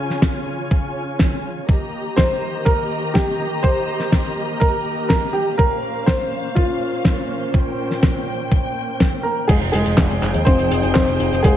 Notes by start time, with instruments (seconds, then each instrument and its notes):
Already playing: string section C#3 C#4 F4 C#5 G#5
0.10 snare
0.22 kick, snare
0.71 kick
1.19 kick, snare
1.69 string section D#3 A#3 G4 D#5 A#5, kick
2.16 grand piano C5, kick, snare
2.65 grand piano A#4, kick
3.14 grand piano G4, kick, snare
3.63 grand piano C5, kick
4.00 snare
4.12 kick, snare
4.60 grand piano A#4, kick
5.09 grand piano A#4, kick, snare
5.33 grand piano G4
5.58 string section A#2 C#4 C5 F5, grand piano A#4, kick
6.06 grand piano C5, kick, snare
6.55 grand piano F4, kick
7.05 kick, snare
7.54 string section G5, kick
7.91 snare
8.03 kick, snare
8.52 kick
9.00 kick, snare
9.23 grand piano A#3 A#4
9.48 picked electric bass F1, string section F3 C4 D#4 G#4 G5, grand piano G#3 G#4, kick, closed hi-hat, crash
9.61 picked electric bass F1, closed hi-hat
9.72 picked electric bass F1, grand piano G#3 G#4, closed hi-hat
9.86 picked electric bass F1, closed hi-hat
9.97 kick, snare, clap, closed hi-hat
10.10 picked electric bass F1, closed hi-hat
10.22 picked electric bass F1, clap, closed hi-hat
10.34 picked electric bass D#2, closed hi-hat
10.45 picked electric bass F1, grand piano C4 C5, kick, closed hi-hat
10.59 picked electric bass F1, closed hi-hat
10.71 picked electric bass F1, closed hi-hat
10.83 picked electric bass F1, closed hi-hat
10.94 grand piano C4 C5, kick, snare, clap, closed hi-hat
11.07 picked electric bass F1, closed hi-hat
11.20 picked electric bass F1, closed hi-hat
11.32 picked electric bass F1, closed hi-hat
11.43 picked electric bass F1, grand piano G#3 G#4, kick, closed hi-hat